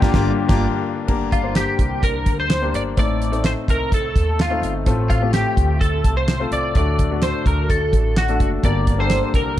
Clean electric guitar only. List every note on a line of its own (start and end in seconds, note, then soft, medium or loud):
0.00 0.81 G4 loud
1.33 1.56 F4 medium
1.56 2.05 G4 medium
2.04 2.36 A#4 medium
2.40 2.75 C5 medium
2.75 2.81 D5 medium
2.99 3.45 D5 medium
3.46 3.52 C5 medium
3.70 3.91 A#4 medium
3.94 4.41 A4 medium
4.41 4.73 F4 medium
5.10 5.33 F4 medium
5.34 5.77 G4 medium
5.81 6.17 A4 medium
6.17 6.49 C5 medium
6.53 6.75 D5 medium
6.77 7.20 D5 medium
7.23 7.47 C5 medium
7.47 7.71 A#4 medium
7.70 8.17 A4 medium
8.18 8.50 F#4 medium
8.65 9.00 D5 medium
9.00 9.35 C5 medium
9.35 9.59 A#4 medium